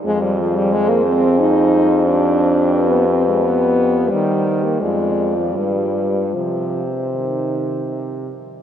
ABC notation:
X:1
M:3/4
L:1/16
Q:1/4=87
K:Cm
V:1 name="French horn"
c12- | c4 =B8 | c4 d4 =B4 | c8- c2 z2 |]
V:2 name="French horn"
A12 | G12- | G4 F8- | F2 z2 E6 z2 |]
V:3 name="French horn" clef=bass
A, G, F, G, A, B, C2 E4 | D4- D =B, C A, B,4 | G,3 B, A,3 F, G,4 | F,3 z E,4 z4 |]
V:4 name="French horn" clef=bass
F,,12- | F,,12 | E,4 F,,4 G,,4 | C,8- C,2 z2 |]